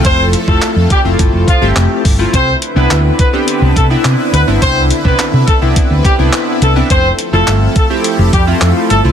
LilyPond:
<<
  \new Staff \with { instrumentName = "Horn section" } { \time 4/4 \key c \major \tempo 4 = 105 <c' c''>8 r16 <a a'>8 r16 <g g'>16 r8. <f f'>8 r4 | <c' c''>8 r16 <b b'>8 r16 <b b'>16 r8. <a a'>16 r8. <b b'>16 r16 | <c' c''>8 r16 <b b'>8 r16 <a a'>16 r8. <g g'>16 r8. <a a'>16 r16 | <c' c''>8 r16 <a a'>8 r16 <a a'>16 r8. <g g'>16 r8. <a a'>16 r16 | }
  \new Staff \with { instrumentName = "Synth keys" } { \time 4/4 \key c \major <a c' e' f'>8 r16 <a c' e' f'>8. r16 <a c' e' f'>8. r16 <a c' e' g'>8. r16 <a c' e' f'>16 | r8. <b c' d' e'>8. r16 <b c' d' g'>8. r16 <b c' d' e'>8. r16 <b c' d' e'>16~ | <b c' d' e'>8 r16 <b c' d' e'>8. r16 <b c' d' e'>8. r16 <b c' d' e'>8. r16 <b c' d' e'>16 | r8. <a c' e' f'>8. r16 <a c' e' g'>8. r16 <a c' e' f'>8. r16 <a c' e' f'>16 | }
  \new Staff \with { instrumentName = "Supersaw synth" } { \time 4/4 \key c \major <f a a'>1 | <d e' b'>1~ | <d e' b'>1 | <f a a'>1 | }
  \new Staff \with { instrumentName = "Fingered electric bass" } { \clef bass \time 4/4 \key c \major f,,8. f,,16 r16 f,16 r16 f,,16 g,,16 f,,16 r16 g,,16 f,,16 r16 g,,8 | c,8 r16 c,16 d,8 r8. c,16 c8 c16 r16 d,16 g,,16 | c,8. c,16 r16 c16 r16 c,16 r16 d,16 r16 c,16 r8 c,8 | f,,8 r16 f,,16 g,,8 r8. f,,16 f,8 f,16 r16 g,,16 c,16 | }
  \new DrumStaff \with { instrumentName = "Drums" } \drummode { \time 4/4 <hh bd>8 hh16 bd16 <hc hh>8 <hh bd>8 <hh bd>8 <hh bd>8 <hc hh>8 <hho bd>8 | <hh bd>8 hh8 <hc hh>8 <hh bd>8 hh8 <hh bd>8 <hc hh>8 hh8 | <hh bd>8 hh16 bd16 <hc hh>8 <hh bd>8 <hh bd>8 <hh bd>8 <hc hh>8 hh8 | <hh bd>8 hh8 <hc hh>8 <hh bd>8 hh8 <hh bd>8 <hc hh>8 hh8 | }
>>